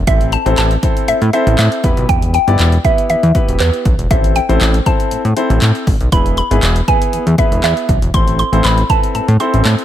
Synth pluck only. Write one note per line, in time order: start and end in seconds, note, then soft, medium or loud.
0.07 0.33 E5 loud
0.33 0.56 A5 loud
0.58 1.10 A5 loud
1.08 1.32 E5 loud
1.33 1.58 E5 loud
1.59 1.94 E5 loud
2.09 2.33 G5 loud
2.34 2.81 G5 loud
2.85 3.09 E5 loud
3.10 3.62 E5 loud
3.60 3.96 B4 medium
4.11 4.34 E5 loud
4.36 4.88 G5 loud
4.86 5.58 A5 loud
6.12 6.37 B5 loud
6.38 6.90 B5 loud
6.88 7.35 G#5 loud
7.39 7.62 E5 medium
7.64 8.00 E5 medium
8.14 8.38 C6 loud
8.39 8.65 C6 loud
8.65 8.88 B5 loud
8.90 9.01 A5 loud
9.15 9.26 A5 loud
9.40 9.85 C6 medium